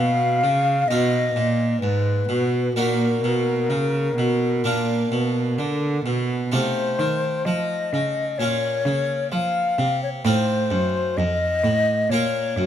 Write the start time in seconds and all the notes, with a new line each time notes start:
Already playing: B2 F5
0.43 C#3
0.88 B2 D#4 F4 D#5
1.35 A#2
1.81 G#2 B4
2.28 B2
2.75 A#2 A#3 D#4 F#4 A#4
3.22 B2
3.69 C#3
4.16 B2
4.63 A#2 A#3 D4 F4
5.11 B2
5.58 D3
6.05 B2
6.52 C3 A3 D#4 F4 C5
6.99 D#3
7.45 F3 D#5
7.92 C#3
8.38 A#2 A#3 C#4 F4 C#5
8.85 C#3
9.32 F3 F5
9.78 C3
10.03 C#5
10.24 A2 C4 D#4 F4 C5
10.70 F#2
11.17 F2 D#5
11.63 A2
12.09 A#2 A#3 F4 A#4 C#5
12.56 F#2